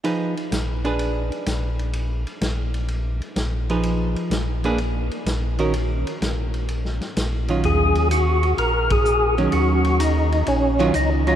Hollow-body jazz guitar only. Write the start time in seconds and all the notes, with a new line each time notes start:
0.04 F3 D#4 G#4 B4
0.85 D4 G#4 B4
3.70 F3 D#4 G#4 B4
4.65 A#3 D4 G#4 B4
5.59 D#3 C#4 F#4 A#4
7.49 D#3 F#3 C#4 F4
9.38 D#3 F#3 C#4
10.79 D#3 F#3 C#4 F4
11.27 D#3 F#3 C#4 F4